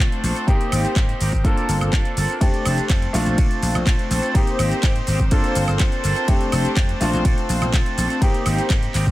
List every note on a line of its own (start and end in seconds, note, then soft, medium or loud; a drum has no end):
0.00 0.22 F3 medium
0.00 0.43 A3 medium
0.00 0.23 C4 loud
0.00 0.43 C4 medium
0.00 2.40 C4 medium
0.00 0.43 D4 medium
0.00 0.24 D4 loud
0.00 0.44 F4 loud
0.00 0.24 A4 loud
0.00 2.40 C5 medium
0.00 shaker soft
0.12 closed hi-hat soft
0.12 shaker soft
0.23 0.31 A#1 medium
0.23 0.36 F3 medium
0.23 0.36 C4 medium
0.23 0.36 D4 medium
0.23 0.34 A4 medium
0.23 open hi-hat loud
0.23 shaker medium
0.35 0.47 C4 medium
0.35 0.48 D4 medium
0.35 0.47 A4 medium
0.35 closed hi-hat soft
0.35 shaker soft
0.47 0.56 G#2 loud
0.47 0.70 G3 medium
0.47 1.40 A#3 medium
0.47 1.40 C4 medium
0.47 1.40 D#4 medium
0.47 0.73 D#4 loud
0.47 1.40 G4 loud
0.47 0.73 G4 loud
0.47 kick loud
0.47 closed hi-hat medium
0.47 shaker soft
0.61 closed hi-hat soft
0.61 shaker soft
0.71 0.84 G#1 loud
0.71 0.95 G3 medium
0.71 0.96 C4 medium
0.71 0.96 D#4 medium
0.71 0.97 G4 medium
0.71 open hi-hat loud
0.71 high woodblock medium
0.71 shaker medium
0.85 muted slap bass stroke soft
0.85 closed hi-hat soft
0.85 shaker soft
0.96 1.12 G#2 medium
0.96 1.18 G3 medium
0.96 1.20 C4 loud
0.96 1.21 D#4 medium
0.96 1.21 G4 medium
0.96 kick loud
0.96 clap loud
0.96 closed hi-hat medium
0.96 shaker soft
1.09 closed hi-hat soft
1.09 shaker soft
1.20 1.29 G#1 medium
1.20 1.33 G3 medium
1.20 1.33 C4 medium
1.20 1.33 D#4 medium
1.20 1.31 G4 medium
1.20 open hi-hat loud
1.20 shaker medium
1.33 1.45 C4 medium
1.33 1.45 D#4 medium
1.33 kick medium
1.33 closed hi-hat soft
1.33 shaker soft
1.44 1.53 G2 loud
1.44 1.57 F3 medium
1.44 2.36 A#3 medium
1.44 1.57 A#3 medium
1.44 2.37 D4 medium
1.44 1.57 D4 medium
1.44 2.37 F4 medium
1.44 2.37 A4 medium
1.44 1.55 A4 medium
1.44 kick loud
1.44 closed hi-hat medium
1.44 shaker soft
1.56 1.92 A#3 medium
1.56 1.93 D4 medium
1.56 1.93 A4 medium
1.56 closed hi-hat soft
1.56 shaker soft
1.69 1.77 G1 medium
1.69 open hi-hat loud
1.69 shaker medium
1.81 1.89 G1 loud
1.81 closed hi-hat soft
1.81 high woodblock medium
1.81 shaker soft
1.93 2.01 G2 loud
1.93 2.15 F3 medium
1.93 2.16 A#3 loud
1.93 2.17 D4 loud
1.93 2.18 A4 loud
1.93 kick loud
1.93 clap loud
1.93 closed hi-hat medium
1.93 shaker soft
2.05 closed hi-hat soft
2.05 shaker soft
2.16 2.25 G1 loud
2.16 2.29 F3 medium
2.16 2.30 A#3 medium
2.16 2.30 D4 medium
2.16 2.28 A4 medium
2.16 open hi-hat loud
2.16 shaker medium
2.29 2.41 A#3 soft
2.29 2.41 D4 medium
2.29 2.41 A4 medium
2.29 closed hi-hat soft
2.29 shaker soft
2.41 2.49 F2 loud
2.41 2.63 G3 medium
2.41 3.09 A3 medium
2.41 3.09 C4 medium
2.41 9.11 C4 medium
2.41 2.64 C4 loud
2.41 3.09 D4 medium
2.41 2.65 D4 loud
2.41 3.10 G4 medium
2.41 2.66 A4 loud
2.41 9.11 C5 medium
2.41 kick loud
2.41 closed hi-hat medium
2.41 ride medium
2.41 shaker soft
2.54 closed hi-hat soft
2.54 shaker soft
2.64 2.78 F1 loud
2.64 2.88 G3 medium
2.64 2.89 C4 medium
2.64 2.89 D4 medium
2.64 2.90 A4 medium
2.64 open hi-hat loud
2.64 high woodblock medium
2.64 shaker medium
2.78 muted slap bass stroke soft
2.78 closed hi-hat soft
2.78 shaker soft
2.89 3.05 F2 medium
2.89 3.12 G3 loud
2.89 3.13 C4 medium
2.89 3.14 D4 medium
2.89 3.15 A4 loud
2.89 kick loud
2.89 clap loud
2.89 closed hi-hat medium
2.89 ride medium
2.89 shaker soft
3.02 closed hi-hat soft
3.02 shaker soft
3.13 3.22 A#1 medium
3.13 3.26 F3 medium
3.13 4.30 A3 medium
3.13 4.30 C4 medium
3.13 3.26 C4 medium
3.13 4.30 D4 medium
3.13 3.26 D4 medium
3.13 4.31 F4 loud
3.13 3.24 A4 medium
3.13 open hi-hat loud
3.13 shaker medium
3.25 3.34 A#1 medium
3.25 3.37 C4 soft
3.25 3.38 D4 medium
3.25 3.37 A4 medium
3.25 closed hi-hat soft
3.25 shaker soft
3.37 3.50 F3 medium
3.37 3.51 C4 medium
3.37 3.48 A4 medium
3.37 kick loud
3.37 closed hi-hat medium
3.37 ride medium
3.37 shaker soft
3.49 3.85 C4 medium
3.49 3.86 D4 medium
3.49 3.86 A4 medium
3.49 closed hi-hat soft
3.49 shaker soft
3.62 3.70 A#1 loud
3.62 open hi-hat loud
3.62 shaker medium
3.75 3.82 A#1 medium
3.75 closed hi-hat soft
3.75 high woodblock medium
3.75 shaker soft
3.85 3.95 A#2 medium
3.85 4.08 F3 medium
3.85 4.10 C4 medium
3.85 4.11 D4 loud
3.85 4.11 A4 loud
3.85 kick loud
3.85 clap loud
3.85 closed hi-hat medium
3.85 ride medium
3.85 shaker soft
3.99 closed hi-hat soft
3.99 shaker soft
4.10 4.19 A#1 medium
4.10 4.23 F3 medium
4.10 4.23 C4 medium
4.10 4.23 D4 medium
4.10 4.21 A4 medium
4.10 open hi-hat loud
4.10 shaker medium
4.22 4.33 C4 medium
4.22 4.35 D4 medium
4.22 4.34 A4 medium
4.22 closed hi-hat soft
4.22 shaker soft
4.34 4.43 G#2 loud
4.34 5.27 A#3 medium
4.34 4.57 C4 medium
4.34 5.27 C4 medium
4.34 4.59 D#4 medium
4.34 5.27 D#4 medium
4.34 5.28 G4 medium
4.34 4.60 G4 medium
4.34 kick loud
4.34 closed hi-hat medium
4.34 ride medium
4.34 shaker soft
4.47 closed hi-hat soft
4.47 shaker soft
4.58 4.71 G#1 loud
4.58 4.81 C4 medium
4.58 4.82 D#4 medium
4.58 4.83 G4 medium
4.58 open hi-hat loud
4.58 high woodblock medium
4.58 shaker medium
4.72 muted slap bass stroke soft
4.72 closed hi-hat soft
4.72 shaker soft
4.83 4.99 G#2 medium
4.83 5.05 C4 medium
4.83 5.07 D#4 medium
4.83 5.08 G4 loud
4.83 kick loud
4.83 clap loud
4.83 closed hi-hat medium
4.83 ride medium
4.83 shaker soft
4.96 closed hi-hat soft
4.96 shaker soft
5.06 5.15 G#1 medium
5.06 5.20 C4 medium
5.06 5.20 D#4 medium
5.06 5.18 G4 medium
5.06 open hi-hat loud
5.06 shaker medium
5.19 5.27 G#1 medium
5.19 5.32 D#4 medium
5.19 5.31 G4 medium
5.19 kick medium
5.19 shaker soft
5.30 5.40 G2 loud
5.30 5.44 F3 medium
5.30 6.24 A#3 medium
5.30 5.44 A#3 medium
5.30 6.24 D4 medium
5.30 5.44 D4 medium
5.30 6.24 F4 medium
5.30 6.24 A4 medium
5.30 5.42 A4 medium
5.30 kick loud
5.30 closed hi-hat medium
5.30 ride medium
5.30 shaker soft
5.43 5.79 A#3 medium
5.43 5.80 D4 medium
5.43 5.80 A4 medium
5.43 closed hi-hat soft
5.43 shaker soft
5.55 5.64 G1 loud
5.55 open hi-hat loud
5.55 shaker medium
5.68 5.76 G1 loud
5.68 closed hi-hat soft
5.68 high woodblock medium
5.68 shaker soft
5.79 5.88 G2 medium
5.79 6.02 F3 loud
5.79 6.03 A#3 medium
5.79 6.04 D4 loud
5.79 6.05 A4 loud
5.79 kick loud
5.79 clap loud
5.79 closed hi-hat medium
5.79 ride medium
5.79 shaker soft
5.92 closed hi-hat soft
5.92 shaker soft
6.03 6.12 G1 medium
6.03 6.16 F3 medium
6.03 6.17 A#3 medium
6.03 6.17 D4 medium
6.03 6.15 A4 medium
6.03 open hi-hat loud
6.03 shaker medium
6.16 6.28 A#3 soft
6.16 6.28 D4 medium
6.16 6.28 A4 medium
6.16 closed hi-hat soft
6.16 shaker soft
6.28 6.36 F2 loud
6.28 6.51 G3 medium
6.28 6.96 A3 medium
6.28 6.96 C4 medium
6.28 6.52 C4 medium
6.28 6.97 D4 medium
6.28 6.53 D4 loud
6.28 6.97 G4 loud
6.28 6.53 A4 loud
6.28 kick loud
6.28 closed hi-hat medium
6.28 ride medium
6.28 shaker soft
6.41 closed hi-hat soft
6.41 shaker soft
6.52 6.65 F1 loud
6.52 6.75 G3 medium
6.52 6.76 C4 medium
6.52 6.76 D4 medium
6.52 6.77 A4 medium
6.52 open hi-hat loud
6.52 high woodblock medium
6.52 shaker medium
6.65 muted slap bass stroke soft
6.65 closed hi-hat soft
6.65 shaker soft
6.77 6.92 F2 medium
6.77 7.00 C4 medium
6.77 7.01 D4 loud
6.77 7.02 A4 medium
6.77 kick loud
6.77 clap loud
6.77 closed hi-hat medium
6.77 ride medium
6.77 shaker soft
6.89 closed hi-hat soft
6.89 shaker soft
7.00 7.09 A#1 medium
7.00 7.13 F3 medium
7.00 8.17 A3 medium
7.00 8.17 C4 medium
7.00 7.14 C4 medium
7.00 8.18 D4 medium
7.00 7.13 D4 medium
7.00 8.18 F4 loud
7.00 7.11 A4 medium
7.00 open hi-hat loud
7.00 shaker medium
7.13 7.21 A#1 medium
7.13 7.24 C4 medium
7.13 7.25 D4 medium
7.13 7.25 A4 medium
7.13 closed hi-hat soft
7.13 shaker soft
7.24 7.33 A#2 loud
7.24 7.37 F3 medium
7.24 7.38 C4 medium
7.24 7.37 D4 medium
7.24 7.35 A4 medium
7.24 kick loud
7.24 closed hi-hat medium
7.24 ride medium
7.24 shaker soft
7.36 7.72 C4 medium
7.36 7.73 D4 medium
7.36 7.73 A4 medium
7.36 closed hi-hat soft
7.36 shaker soft
7.49 7.57 A#1 loud
7.49 open hi-hat loud
7.49 shaker medium
7.62 7.69 A#1 loud
7.62 closed hi-hat soft
7.62 high woodblock medium
7.62 shaker soft
7.72 7.95 F3 medium
7.72 7.97 C4 medium
7.72 7.97 D4 loud
7.72 7.98 A4 loud
7.72 kick loud
7.72 clap loud
7.72 closed hi-hat medium
7.72 ride medium
7.72 shaker soft
7.86 closed hi-hat soft
7.86 shaker soft
7.96 8.06 A#1 medium
7.96 8.10 F3 medium
7.96 8.10 C4 medium
7.96 8.09 D4 medium
7.96 8.08 A4 medium
7.96 open hi-hat loud
7.96 shaker medium
8.09 8.21 C4 soft
8.09 8.22 D4 medium
8.09 8.21 A4 medium
8.09 closed hi-hat soft
8.09 shaker soft
8.21 8.30 G#2 loud
8.21 8.44 G3 medium
8.21 9.11 A#3 medium
8.21 8.45 C4 loud
8.21 9.11 C4 medium
8.21 9.11 D#4 medium
8.21 8.46 D#4 medium
8.21 9.11 G4 medium
8.21 8.47 G4 loud
8.21 kick loud
8.21 closed hi-hat medium
8.21 ride medium
8.21 shaker soft
8.34 closed hi-hat soft
8.34 shaker soft
8.45 8.58 G#1 loud
8.45 8.68 G3 medium
8.45 8.69 C4 medium
8.45 8.70 D#4 medium
8.45 8.70 G4 medium
8.45 open hi-hat loud
8.45 high woodblock medium
8.45 shaker medium
8.58 muted slap bass stroke soft
8.58 closed hi-hat soft
8.58 shaker soft
8.69 8.86 G#2 medium
8.69 8.92 G3 medium
8.69 8.93 C4 loud
8.69 8.94 D#4 medium
8.69 8.95 G4 loud
8.69 kick loud
8.69 clap loud
8.69 closed hi-hat medium
8.69 ride medium
8.69 shaker soft
8.83 closed hi-hat soft
8.83 shaker soft
8.93 9.02 G#1 medium
8.93 9.06 G3 medium
8.93 9.07 C4 medium
8.93 9.06 D#4 medium
8.93 9.05 G4 medium
8.93 clap medium
8.93 open hi-hat loud
8.93 shaker medium
9.06 9.11 G#1 medium
9.06 9.11 D#4 medium
9.06 9.11 G4 medium
9.06 kick medium
9.06 closed hi-hat soft
9.06 shaker soft